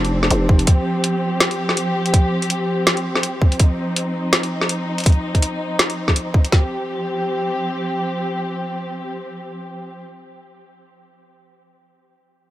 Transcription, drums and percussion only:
0.05 closed hi-hat
0.23 snare
0.31 closed hi-hat
0.49 kick
0.59 closed hi-hat
0.67 kick, closed hi-hat
1.04 closed hi-hat
1.40 snare, closed hi-hat
1.51 closed hi-hat
1.69 snare
1.77 closed hi-hat
2.06 closed hi-hat
2.14 kick, closed hi-hat
2.42 closed hi-hat
2.50 closed hi-hat
2.87 snare, closed hi-hat
2.97 closed hi-hat
3.16 snare
3.23 closed hi-hat
3.42 kick
3.52 closed hi-hat
3.60 kick, closed hi-hat
3.96 closed hi-hat
4.33 snare, closed hi-hat
4.43 closed hi-hat
4.61 snare
4.69 closed hi-hat
4.98 closed hi-hat
5.00 closed hi-hat
5.04 kick, closed hi-hat
5.06 closed hi-hat
5.12 closed hi-hat
5.35 kick, closed hi-hat
5.42 closed hi-hat
5.79 snare, closed hi-hat
5.90 closed hi-hat
6.08 kick, snare
6.16 closed hi-hat
6.34 kick
6.45 closed hi-hat
6.52 kick, snare

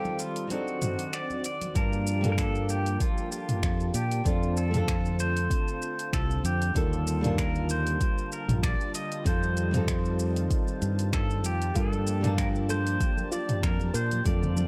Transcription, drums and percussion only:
0.05 muted conga, shaker
0.19 open hi-hat, shaker
0.36 open hi-hat, shaker
0.50 open hi-hat, muted conga, shaker
0.68 shaker
0.82 mid tom, open hi-hat, muted conga, shaker
0.99 open hi-hat, shaker
1.13 finger snap, shaker
1.30 muted conga, high conga, shaker
1.44 open hi-hat, shaker
1.61 open hi-hat, muted conga, shaker
1.75 kick, open hi-hat, shaker
1.93 shaker
2.07 shaker
2.24 mid tom, open hi-hat, shaker
2.38 finger snap, kick, open hi-hat, shaker
2.55 shaker
2.69 shaker
2.86 open hi-hat, shaker
3.00 kick, open hi-hat, shaker
3.18 shaker
3.32 shaker
3.49 mid tom, open hi-hat, shaker
3.63 finger snap, kick, shaker
3.80 shaker
3.94 open hi-hat, shaker
4.11 open hi-hat, shaker
4.25 kick, open hi-hat, shaker
4.43 shaker
4.57 shaker
4.74 mid tom, open hi-hat, shaker
4.88 finger snap, kick, open hi-hat, shaker
5.05 shaker
5.20 shaker
5.37 open hi-hat, shaker
5.50 kick, open hi-hat, shaker
5.68 shaker
5.82 shaker
5.99 open hi-hat, shaker
6.13 finger snap, kick, shaker
6.31 shaker
6.45 open hi-hat, shaker
6.62 open hi-hat, shaker
6.75 kick, open hi-hat, shaker
6.93 shaker
7.07 shaker
7.24 mid tom, open hi-hat, shaker
7.38 finger snap, kick, open hi-hat, shaker
7.55 shaker
7.69 shaker
7.87 open hi-hat, shaker
8.01 kick, open hi-hat, shaker
8.18 shaker
8.32 shaker
8.49 mid tom, open hi-hat, shaker
8.63 finger snap, kick, shaker
8.81 shaker
8.95 open hi-hat, shaker
9.12 open hi-hat, shaker
9.25 kick, open hi-hat, shaker
9.43 shaker
9.57 open hi-hat, shaker
9.74 mid tom, open hi-hat, shaker
9.88 finger snap, kick, open hi-hat, shaker
10.05 shaker
10.19 shaker
10.36 open hi-hat, shaker
10.50 kick, open hi-hat, shaker
10.68 shaker
10.82 open hi-hat, shaker
10.99 open hi-hat, shaker
11.13 finger snap, kick, shaker
11.30 shaker
11.44 open hi-hat, shaker
11.62 open hi-hat, shaker
11.75 kick, open hi-hat, shaker
11.93 muted conga, shaker
12.07 shaker
12.24 mid tom, open hi-hat, muted conga, shaker
12.38 finger snap, kick, open hi-hat, shaker
12.55 shaker
12.70 muted conga, shaker
12.87 open hi-hat, shaker
13.00 kick, open hi-hat, muted conga, shaker
13.17 high conga, shaker
13.32 shaker
13.49 mid tom, open hi-hat, muted conga, shaker
13.63 finger snap, kick, shaker
13.79 muted conga, shaker
13.94 open hi-hat, shaker
14.11 open hi-hat, high conga, shaker
14.25 kick, open hi-hat, muted conga, shaker
14.43 low conga, shaker
14.57 muted conga, high conga, shaker

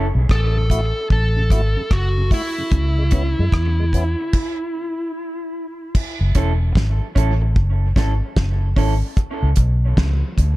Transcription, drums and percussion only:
0.29 kick, cross-stick
0.70 kick, closed hi-hat
1.10 kick
1.50 kick, cross-stick, closed hi-hat
1.91 kick, cross-stick
2.31 kick, open hi-hat
2.71 kick, hi-hat pedal
3.11 kick, closed hi-hat
3.52 kick, cross-stick
3.93 kick, closed hi-hat
4.33 kick, crash
5.95 kick, crash
6.35 kick, closed hi-hat
6.75 kick, snare
7.16 kick, closed hi-hat
7.56 kick
7.96 kick, snare, closed hi-hat
8.36 kick, snare
8.76 kick, open hi-hat
9.17 kick, hi-hat pedal
9.56 kick, closed hi-hat
9.97 kick, snare
10.38 kick, closed hi-hat

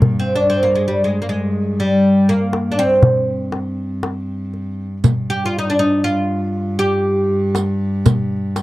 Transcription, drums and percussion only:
0.02 darbuka dum
2.53 darbuka tek
3.03 darbuka dum
3.52 darbuka tek
4.03 darbuka tek
4.53 darbuka ka
5.04 riq, darbuka dum
7.55 riq, darbuka tek
8.06 riq, darbuka dum
8.56 riq, darbuka tek

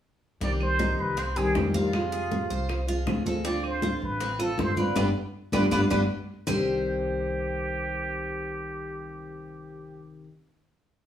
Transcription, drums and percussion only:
0.41 high bongo, high conga
0.61 high conga, claves
0.80 high bongo, high conga
0.99 high conga
1.18 high bongo, high conga
1.37 high conga, claves
1.55 high bongo, low bongo, high conga
1.75 high conga
1.93 high bongo, high conga, claves
2.13 high bongo, high conga
2.31 high bongo, high conga
2.50 high bongo, high conga
2.69 high bongo, high conga, claves
2.89 high conga
3.07 high bongo, low bongo, high conga, claves
3.26 high bongo, high conga
3.45 high bongo, high conga
3.64 high conga, claves
3.82 high bongo, high conga
4.02 high conga
4.20 high bongo, high conga
4.39 high conga, claves
4.58 high bongo, low bongo, high conga
4.76 high conga
4.96 low bongo, high conga, claves
5.52 low bongo, high conga, claves
5.71 low bongo, high conga, claves
5.91 low bongo, high conga, claves
6.47 low bongo, low conga, claves

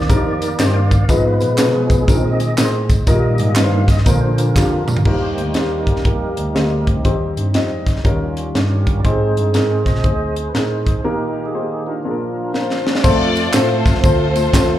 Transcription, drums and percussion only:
0.01 snare
0.10 kick, closed hi-hat, tambourine
0.42 closed hi-hat, tambourine
0.59 snare, clap, closed hi-hat, tambourine
0.91 kick, closed hi-hat, tambourine
1.09 kick, closed hi-hat, tambourine
1.40 closed hi-hat, tambourine
1.58 snare, clap, closed hi-hat, tambourine
1.90 kick, closed hi-hat, tambourine
2.08 kick, closed hi-hat, tambourine
2.40 closed hi-hat, tambourine
2.58 snare, clap, closed hi-hat, tambourine
2.90 kick, closed hi-hat, tambourine
3.07 kick, closed hi-hat, tambourine
3.38 closed hi-hat, tambourine
3.56 snare, clap, closed hi-hat, tambourine
3.88 kick, snare, closed hi-hat, tambourine
3.97 snare
4.06 kick, closed hi-hat, tambourine
4.38 closed hi-hat, tambourine
4.56 kick, snare, clap, tambourine
4.88 mid tom, tambourine
4.97 floor tom
5.05 kick, crash
5.38 closed hi-hat
5.54 snare, closed hi-hat
5.87 kick, closed hi-hat
5.96 snare
6.05 kick, closed hi-hat
6.37 closed hi-hat
6.56 snare, closed hi-hat
6.87 kick, closed hi-hat
7.05 kick, closed hi-hat
7.37 closed hi-hat
7.54 snare, closed hi-hat
7.87 kick, snare, closed hi-hat
7.96 snare
8.05 kick, closed hi-hat
8.37 closed hi-hat
8.55 snare, closed hi-hat
8.87 kick, closed hi-hat
9.05 kick, closed hi-hat
9.37 closed hi-hat
9.54 snare, closed hi-hat
9.86 kick, snare, closed hi-hat
9.95 snare
10.04 kick, closed hi-hat
10.36 closed hi-hat
10.55 snare, closed hi-hat
10.87 kick, closed hi-hat
12.54 snare
12.70 snare
12.87 snare
12.95 snare
13.04 kick, crash, tambourine
13.36 ride, tambourine
13.53 snare, clap, ride, tambourine
13.86 kick, snare, ride, tambourine
13.95 snare
14.04 kick, ride, tambourine
14.36 ride, tambourine
14.53 kick, snare, clap, ride, tambourine

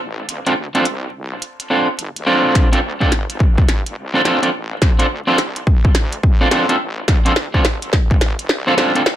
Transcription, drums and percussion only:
0.29 closed hi-hat
0.47 closed hi-hat
0.75 closed hi-hat
0.85 closed hi-hat
1.42 closed hi-hat
1.60 closed hi-hat
1.99 closed hi-hat
2.16 closed hi-hat
2.55 kick, snare, closed hi-hat
2.73 closed hi-hat
3.01 kick
3.12 snare, closed hi-hat
3.30 closed hi-hat
3.40 kick
3.58 kick
3.68 snare, closed hi-hat
3.86 closed hi-hat
4.25 snare, closed hi-hat
4.43 closed hi-hat
4.82 kick, snare, closed hi-hat
5.00 closed hi-hat
5.38 snare, closed hi-hat
5.56 closed hi-hat
5.67 kick
5.85 kick
5.95 snare, closed hi-hat
6.13 closed hi-hat
6.23 kick
6.51 snare, closed hi-hat
6.69 closed hi-hat
7.08 kick, snare, closed hi-hat
7.26 closed hi-hat
7.36 snare
7.54 kick
7.65 snare, closed hi-hat
7.82 closed hi-hat
7.93 kick, snare
8.11 kick
8.21 snare, closed hi-hat
8.39 closed hi-hat
8.49 snare
8.78 snare, closed hi-hat
8.95 closed hi-hat
9.06 snare

